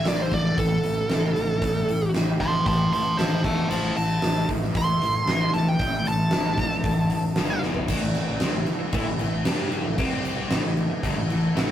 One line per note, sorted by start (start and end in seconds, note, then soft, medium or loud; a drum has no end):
0.00 3.40 A3 medium
0.00 7.32 E4 medium
0.00 1.59 A4 medium
0.05 0.25 A1 loud
0.05 0.29 A2 medium
0.05 0.29 E3 medium
0.05 0.22 D5 medium
0.05 snare loud
0.05 open hi-hat medium
0.22 0.34 C5 medium
0.31 0.51 A1 medium
0.31 0.55 A2 medium
0.31 0.55 E3 medium
0.31 0.58 D5 medium
0.31 kick medium
0.31 open hi-hat medium
0.58 0.77 A1 medium
0.58 0.81 A2 medium
0.58 0.81 E3 medium
0.58 2.10 A4 loud
0.58 kick loud
0.58 open hi-hat medium
0.84 1.04 A1 medium
0.84 1.07 A2 medium
0.84 1.07 E3 medium
0.84 open hi-hat medium
1.09 1.30 A1 medium
1.09 1.33 A2 medium
1.09 1.33 E3 loud
1.09 snare loud
1.09 open hi-hat medium
1.36 1.56 A1 medium
1.36 1.59 A2 medium
1.36 1.59 E3 medium
1.36 open hi-hat medium
1.61 1.81 A1 loud
1.61 1.86 A2 medium
1.61 1.86 E3 medium
1.61 3.42 G4 medium
1.61 kick loud
1.61 open hi-hat medium
1.88 2.07 A1 medium
1.88 2.11 A2 medium
1.88 2.12 E3 medium
1.88 open hi-hat medium
2.14 2.33 A1 loud
2.14 2.37 A2 medium
2.14 2.38 E3 medium
2.14 snare loud
2.14 open hi-hat medium
2.39 2.60 A1 loud
2.39 2.63 A2 medium
2.39 2.63 E3 medium
2.39 2.66 A5 loud
2.39 2.66 C6 loud
2.39 kick medium
2.39 open hi-hat medium
2.54 snare soft
2.65 3.05 A1 medium
2.65 2.89 A2 medium
2.65 2.89 E3 medium
2.65 2.91 A5 medium
2.65 2.92 C6 medium
2.65 kick loud
2.65 open hi-hat medium
2.92 3.16 A2 medium
2.92 3.16 E3 medium
2.92 3.17 A5 medium
2.92 3.18 C6 medium
2.92 open hi-hat medium
3.17 3.37 D#2 medium
3.17 3.42 A2 medium
3.17 3.42 E3 medium
3.17 3.42 C5 medium
3.17 3.43 A5 loud
3.17 snare loud
3.17 open hi-hat medium
3.44 3.64 E1 loud
3.44 3.69 E2 medium
3.44 3.69 B2 loud
3.44 3.69 E3 loud
3.44 3.69 E5 medium
3.44 3.68 A5 medium
3.44 kick loud
3.44 open hi-hat medium
3.69 3.90 A1 loud
3.69 3.95 A2 loud
3.69 3.95 E3 medium
3.69 7.32 A3 medium
3.69 3.95 A3 loud
3.69 7.58 A4 medium
3.69 3.94 C5 medium
3.69 3.95 A5 medium
3.69 crash medium
3.96 4.16 A1 medium
3.96 4.20 A2 medium
3.96 4.20 E3 medium
3.96 4.47 A5 medium
3.96 open hi-hat medium
4.22 4.42 A1 loud
4.22 4.47 A2 medium
4.22 4.47 E3 medium
4.22 snare loud
4.22 open hi-hat medium
4.49 4.68 A1 medium
4.49 4.73 A2 medium
4.49 4.73 E3 medium
4.49 kick medium
4.49 open hi-hat medium
4.62 snare soft
4.75 4.95 A1 medium
4.75 4.99 A2 medium
4.75 4.99 E3 medium
4.75 5.52 C6 loud
4.75 kick loud
4.75 open hi-hat medium
5.02 5.21 A1 medium
5.02 5.25 A2 medium
5.02 5.25 E3 medium
5.02 open hi-hat medium
5.27 5.47 A1 medium
5.27 5.51 A2 medium
5.27 5.51 E3 medium
5.27 snare loud
5.27 open hi-hat medium
5.54 5.74 A1 loud
5.54 5.77 A2 medium
5.54 5.77 E3 medium
5.54 5.68 A5 loud
5.54 open hi-hat medium
5.68 6.06 G5 medium
5.79 5.99 A1 loud
5.79 6.04 A2 medium
5.79 6.04 E3 medium
5.79 kick loud
5.79 open hi-hat medium
6.05 6.26 A1 medium
6.05 6.30 A2 medium
6.05 6.30 E3 medium
6.05 7.60 A5 medium
6.05 open hi-hat medium
6.31 6.52 A1 loud
6.31 6.56 A2 medium
6.31 6.56 E3 medium
6.31 snare loud
6.31 open hi-hat medium
6.58 6.77 A1 medium
6.58 6.82 A2 medium
6.58 6.82 E3 medium
6.58 kick medium
6.58 open hi-hat medium
6.71 snare soft
6.84 7.23 A1 medium
6.84 7.08 A2 medium
6.84 7.08 E3 medium
6.84 kick loud
6.84 open hi-hat medium
7.10 7.34 A2 medium
7.10 7.34 E3 medium
7.10 open hi-hat medium
7.36 7.56 G1 loud
7.36 7.61 G2 loud
7.36 7.62 D3 loud
7.36 7.62 G3 loud
7.36 snare loud
7.36 open hi-hat medium
7.62 7.83 E1 loud
7.62 7.88 E2 medium
7.62 7.88 B2 loud
7.62 7.88 E3 loud
7.62 snare medium
7.75 floor tom medium
7.88 8.01 A1 loud
7.88 8.01 A2 medium
7.88 8.02 E3 loud
7.88 9.96 A3 medium
7.88 9.97 E4 medium
7.88 9.96 A4 loud
7.88 kick loud
7.88 crash loud
7.88 crash medium
8.02 8.14 A1 medium
8.02 8.15 A2 medium
8.02 8.15 E3 medium
8.15 8.28 A1 medium
8.15 8.28 A2 medium
8.15 8.28 E3 medium
8.15 crash medium
8.29 8.41 A1 medium
8.29 8.41 A2 medium
8.29 8.42 E3 medium
8.40 8.54 C2 loud
8.40 8.54 C3 loud
8.40 8.54 G3 loud
8.40 snare loud
8.40 crash medium
8.55 8.67 A1 medium
8.55 8.66 A2 medium
8.55 8.68 E3 medium
8.66 muted distorted electric guitar stroke medium
8.66 muted overdriven electric guitar stroke medium
8.66 muted fingered electric bass stroke soft
8.66 crash medium
8.81 muted overdriven electric guitar stroke medium
8.81 muted distorted electric guitar stroke medium
8.81 muted fingered electric bass stroke soft
8.93 9.06 A2 loud
8.93 9.06 A3 loud
8.93 9.06 E4 medium
8.93 kick loud
8.93 crash medium
9.06 9.19 A1 medium
9.06 9.18 A2 medium
9.06 9.19 E3 medium
9.19 9.45 A1 medium
9.19 9.41 A2 medium
9.19 9.41 E3 medium
9.19 crash medium
9.45 9.83 G2 medium
9.45 9.84 G3 medium
9.45 9.85 D4 loud
9.45 9.85 G4 loud
9.45 snare loud
9.45 crash medium
9.72 crash medium
9.85 9.98 A1 medium
9.85 9.98 A2 medium
9.85 9.99 E3 medium
9.97 10.47 C2 loud
9.97 10.50 C3 loud
9.97 10.50 G3 loud
9.97 10.50 C4 medium
9.97 10.51 C4 loud
9.97 10.50 G4 medium
9.97 10.50 D5 medium
9.97 kick loud
9.97 crash medium
10.25 crash medium
10.50 10.63 A1 loud
10.50 10.62 A2 medium
10.50 10.63 E3 loud
10.50 11.71 A3 medium
10.50 11.71 E4 medium
10.50 11.71 A4 medium
10.50 snare loud
10.50 crash medium
10.64 10.89 A1 medium
10.64 10.85 A2 medium
10.64 10.85 E3 medium
10.77 crash medium
10.91 muted distorted electric guitar stroke medium
10.91 muted fingered electric bass stroke soft
10.91 muted overdriven electric guitar stroke medium
11.03 11.16 G1 medium
11.03 11.16 G2 loud
11.03 11.16 D3 loud
11.03 kick loud
11.03 crash medium
11.17 11.29 A1 medium
11.17 11.29 A2 medium
11.17 11.29 E3 medium
11.30 11.54 A1 medium
11.30 11.51 A2 medium
11.30 11.51 E3 medium
11.30 crash medium
11.56 11.71 A1 loud
11.56 11.71 A2 medium
11.56 11.71 E3 loud
11.56 11.71 A3 loud
11.56 snare loud
11.56 crash medium